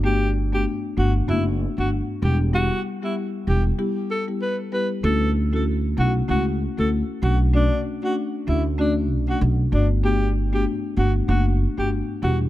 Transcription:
X:1
M:4/4
L:1/16
Q:"Swing 16ths" 1/4=96
K:Glyd
V:1 name="Alto saxophone"
G2 z G z2 F z E z2 F z2 G z | F2 z E z2 G z3 A z B z B z | A2 z A z2 F z F z2 A z2 F z | D2 z F z2 E z D z2 F z2 D z |
G2 z G z2 F z F z2 G z2 F z |]
V:2 name="Marimba"
[A,B,DF] z2 [A,B,DF]3 [A,B,DF]2 [A,B,DF]3 [A,B,DF]3 [G,B,EG]2 | [G,B,EG] z2 [G,B,EG]3 [G,B,EG]2 [G,B,EG]3 [G,B,EG]3 [G,B,EG]2 | [A,CEF] z2 [A,CEF]3 [A,CEF]2 [A,CEF]3 [A,CEF] z2 [A,CDF] z | [A,CDF] z2 [A,CDF]3 [A,CDF]2 [A,CDF]3 [A,CDF]3 [A,B,DF]2 |
[A,B,DF] z2 [A,B,DF]3 [A,B,DF]2 [A,B,DF]3 [A,B,DF]3 [G,B,EG]2 |]
V:3 name="Upright bass" clef=bass
G,,,6 G,,,2 F,,,3 G,,,2 z E,,,2- | E,,,2 z4 E,,,2 z8 | D,,6 B,,,2 C,,3 D,,2 z B,,,2- | B,,,2 z4 D,,4 B,,,2 B,,,2 G,,,2- |
G,,,6 G,,,2 F,,,3 G,,,2 z E,,,2 |]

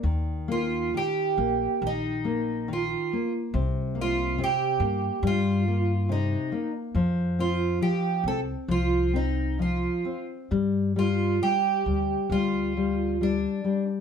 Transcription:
X:1
M:4/4
L:1/16
Q:1/4=68
K:Fmix
V:1 name="Twelve-string acoustic guitar"
z2 F2 G4 E4 F3 z | z2 F2 G4 F4 E3 z | z2 F2 G2 A2 F2 E2 F3 z | z2 F2 G4 F4 D3 z |]
V:2 name="Nylon-string guitar" clef=bass
E,2 B,2 E,2 B,2 E,2 B,2 E,2 B,2 | C,2 B,2 C,2 B,2 G,2 B,2 C,2 B,2 | F,2 C2 F,2 C2 F,2 C2 F,2 C2 | G,2 G,2 G,2 G,2 G,2 G,2 G,2 G,2 |]
V:3 name="Upright bass" clef=bass
E,,6 B,,,2 B,,,8 | C,,6 G,,2 G,,8 | F,,6 C,,2 C,,8 | G,,6 D,,2 D,,8 |]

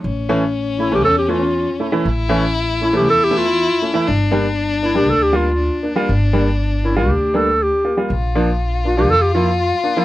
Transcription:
X:1
M:4/4
L:1/16
Q:1/4=119
K:Aphr
V:1 name="Clarinet"
z6 E G A G F4 z2 | z6 E G A G F4 z2 | z6 E G A G F4 z2 | z6 E G3 A2 G3 z |
z6 F G A G F4 z2 |]
V:2 name="Violin"
^C16 | E8 E8 | D12 D4- | D12- D2 z2 |
F16 |]
V:3 name="Upright piano"
z2 [E,A,^C] z3 [A,E] [E,A,C] z2 [E,A,C] z3 [A,E] [E,A,E] | z2 [E,A,^C] z3 [A,C] [E,A,C] z2 [E,A,E] z3 [A,C] [E,A,E] | z2 [G,B,D] z3 [B,D] [G,B,D] z2 [G,B,F] z3 [B,D] [G,B,F] | z2 [G,B,D] z3 [B,^C] [G,B,F] z2 [G,B,D] z3 [B,F] [G,B,F] |
z2 [F,B,D] z3 [B,D] [F,B,D] z2 [F,B,E] z3 [B,D] [F,B,E] |]
V:4 name="Upright bass" clef=bass
A,,,8 E,,8 | A,,,8 E,,8 | G,,,8 D,,8 | G,,,8 D,,8 |
B,,,8 F,,8 |]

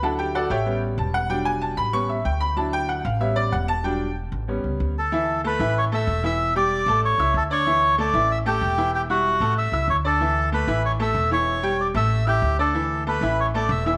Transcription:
X:1
M:4/4
L:1/8
Q:1/4=189
K:Amix
V:1 name="Melodica"
z8 | z8 | z8 | z6 z [Aa]- |
[Aa]2 [Bb]2 [cc'] [ee']2 [ee']- | [ee'] [dd']3 [cc']2 [Aa] [cc']- | [cc']2 [dd']2 [ee'] [Gg]3 | [Gg] [Ff]3 [ee']2 [cc'] [Aa]- |
[Aa]2 [Bb]2 [cc'] [ee']2 [cc']- | [cc']2 [dd'] [ee']2 [Gg]2 [Aa]- | [Aa]2 [Bb]2 [cc'] [dd'] [ee'] [ee'] |]
V:2 name="Upright piano"
[Aefa] [Gg] [FAdf] [Gceg]2 z a f | g ^g a b c' e =g b | a g f =f e d ^f a | g2 z6 |
[E,Ee]2 [A,Aa] [E,Ee]2 [A,Aa]2 [E,Ee]- | [E,Ee] [G,Gg]2 [A,Aa]2 [Eee']2 [Ddd'] | [E,Ee]2 [A,Aa] [E,Ee]2 [A,Aa]2 [E,Ee]- | [E,Ee] [G,Ee]2 [A,Aa]2 [Eee']2 [Ddd'] |
[E,Ee]2 [A,Aa] [E,Ee]2 [A,Aa]2 [E,Ee]- | [E,Ee] [G,Gg]2 [A,Aa]2 [Eee']2 [Ddd'] | [E,Ee]2 [A,Aa] [E,Ee]2 [A,Aa]2 [E,Ee] |]
V:3 name="Upright piano"
[F,DE]3 z [G,B,C]4 | [F,G,D]4 [G,B,C] z3 | [F,DE]3 z [G,B,C]3 z | [F,G,D] z3 [G,B,C]3 z |
z8 | z8 | z8 | z8 |
z8 | z8 | z8 |]
V:4 name="Upright bass" clef=bass
D,,3 A,,,3 E,,,2- | E,,,3 A,,,3 D,,2- | D,,3 A,,,3 E,,,2- | E,,,3 A,,,2 C,, D,,2- |
D,,3 A,,,3 E,,,2- | E,,,3 A,,,2 C,, D,,2- | D,,3 A,,,3 E,,,2- | E,,,3 A,,,2 C,, D,,2- |
D,,3 A,,,3 E,,,2- | E,,,3 A,,,3 D,,2- | D,,3 A,,,3 E,,,2 |]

